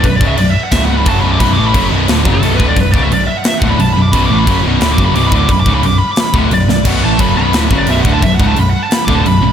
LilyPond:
<<
  \new Staff \with { instrumentName = "Lead electric guitar" } { \time 4/4 \key b \minor \tempo 4 = 176 \tuplet 3/2 { b'8 d''8 e''8 d''8 e''8 fis''8 e''8 fis''8 b''8 a''8 b''8 d'''8 } | \tuplet 3/2 { b''8 d'''8 b''8 } r4 \tuplet 3/2 { r4 a'8~ a'8 b'8 d''8 } | \tuplet 3/2 { b'8 d''8 e''8 d''8 e''8 fis''8 e''8 fis''8 b''8 a''8 b''8 d'''8 } | \tuplet 3/2 { b''8 d'''8 b''8 } r4 \tuplet 3/2 { b''8 d'''8 b''8 d'''8 b''8 d'''8 } |
\tuplet 3/2 { b''8 d'''8 b''8 d'''8 b''8 d'''8 } b''8 r8 d''4 | fis''8 a''8 b''8 b''8 \tuplet 3/2 { r4 d''8 e''8 fis''8 a''8 } | \tuplet 3/2 { e''8 fis''8 a''8 b''8 fis''8 a''8 b''8 d'''8 a''8 } b''4 | }
  \new Staff \with { instrumentName = "Distorted electric guitar" } { \clef bass \time 4/4 \key b \minor <b,, fis,>8 <cis, gis, cis>8 <b,, fis,>8 r8 <cis, gis, cis>4 <fis, cis fis>8 <b,, fis, b,>8 | <b,, fis, b,>8 <a, e a>8 <fis, cis fis>8 <b,, fis, b,>8 <d, a, d>8 <fis, cis fis>8 <b,, fis, b,>8 <d, a, d>8 | <b,, fis,>8 <cis, gis, cis>8 <b,, fis,>8 r4 <d, a, d>8 <b,, fis,>8 <b,, fis,>8 | <b,, fis, b,>8 <a, e a>8 <fis, cis fis>8 <b,, fis, b,>8 <d, a, d>8 <fis, cis fis>8 <b,, fis, b,>8 <d, a, d>8 |
<b,, fis,>8 <cis, gis, cis>8 <b,, fis,>8 r4 <d, a, d>8 <b,, fis,>8 <b,, fis,>8 | <b,, fis, b,>8 <a, e a>8 <fis, cis fis>8 <b,, fis, b,>8 <d, a, d>8 <fis, cis fis>8 <b,, fis, b,>8 <d, a, d>8 | <b,, fis,>8 <cis, gis, cis>8 <b,, fis,>8 r4 <d, a, d>8 <b,, fis,>8 <b,, fis,>8 | }
  \new Staff \with { instrumentName = "Distorted electric guitar" } { \clef bass \time 4/4 \key b \minor <b,, fis,>8 <cis, gis, cis>8 <b,, fis,>8 r8 <cis, gis, cis>4 <fis, cis fis>8 <b,, fis, b,>8 | <b,, fis, b,>8 <a, e a>8 <fis, cis fis>8 <b,, fis, b,>8 <d, a, d>8 <fis, cis fis>8 <b,, fis, b,>8 <d, a, d>8 | <b,, fis,>8 <cis, gis, cis>8 <b,, fis,>8 r4 <d, a, d>8 <b,, fis,>8 <b,, fis,>8 | <b,, fis, b,>8 <a, e a>8 <fis, cis fis>8 <b,, fis, b,>8 <d, a, d>8 <fis, cis fis>8 <b,, fis, b,>8 <d, a, d>8 |
<b,, fis,>8 <cis, gis, cis>8 <b,, fis,>8 r4 <d, a, d>8 <b,, fis,>8 <b,, fis,>8 | <b,, fis, b,>8 <a, e a>8 <fis, cis fis>8 <b,, fis, b,>8 <d, a, d>8 <fis, cis fis>8 <b,, fis, b,>8 <d, a, d>8 | <b,, fis,>8 <cis, gis, cis>8 <b,, fis,>8 r4 <d, a, d>8 <b,, fis,>8 <b,, fis,>8 | }
  \new Staff \with { instrumentName = "Distorted electric guitar" } { \clef bass \time 4/4 \key b \minor r1 | <b,, fis, b,>8 <a, e a>8 <fis, cis fis>8 <b,, fis, b,>8 <d, a, d>8 <fis, cis fis>8 <b,, fis, b,>8 <d, a, d>8 | <b,, fis,>8 <cis, gis, cis>8 <b,, fis,>8 r4 <d, a, d>8 <b,, fis,>8 <b,, fis,>8 | <b,, fis, b,>8 <a, e a>8 <fis, cis fis>8 <b,, fis, b,>8 <d, a, d>8 <fis, cis fis>8 <b,, fis, b,>8 <d, a, d>8 |
<b,, fis,>8 <cis, gis, cis>8 <b,, fis,>8 r4 <d, a, d>8 <b,, fis,>8 <b,, fis,>8 | <b,, fis, b,>8 <a, e a>8 <fis, cis fis>8 <b,, fis, b,>8 <d, a, d>8 <fis, cis fis>8 <b,, fis, b,>8 <d, a, d>8 | <b,, fis,>8 <cis, gis, cis>8 <b,, fis,>8 r4 <d, a, d>8 <b,, fis,>8 <b,, fis,>8 | }
  \new Staff \with { instrumentName = "Picked electric bass" } { \clef bass \time 4/4 \key b \minor b,,,8 cis,,8 b,,,8 r8 cis,,4 fis,,8 b,,,8 | b,,,8 a,,8 fis,,8 b,,,8 d,,8 fis,,8 b,,,8 d,,8 | b,,,8 cis,,8 b,,,8 r4 d,,8 b,,,8 b,,,8 | b,,,8 a,,8 fis,,8 b,,,8 d,,8 fis,,8 b,,,8 d,,8 |
b,,,8 cis,,8 b,,,8 r4 d,,8 b,,,8 b,,,8 | b,,,8 a,,8 fis,,8 b,,,8 d,,8 fis,,8 b,,,8 d,,8 | b,,,8 cis,,8 b,,,8 r4 d,,8 b,,,8 b,,,8 | }
  \new DrumStaff \with { instrumentName = "Drums" } \drummode { \time 4/4 <cymc bd>8 bd8 cymc4 <cymc bd sn>4 <cymc bd>4 | <cymc bd>4 <cymc bd>4 <cymc sn>8 bd8 cymc8 bd8 | <cymc bd>8 bd8 cymc4 <cymc sn>8 bd8 cymc4 | <cymc bd>4 <cymc bd>4 <cymc sn>8 bd8 cymc8 bd8 |
<cymc bd>8 bd8 cymc4 <cymc sn>8 bd8 cymc8 sn8 | <cymc bd>4 <cymc bd>4 <cymc sn>8 bd8 cymc8 bd8 | <cymc bd>8 bd8 cymc4 <cymc sn>8 bd8 cymc4 | }
>>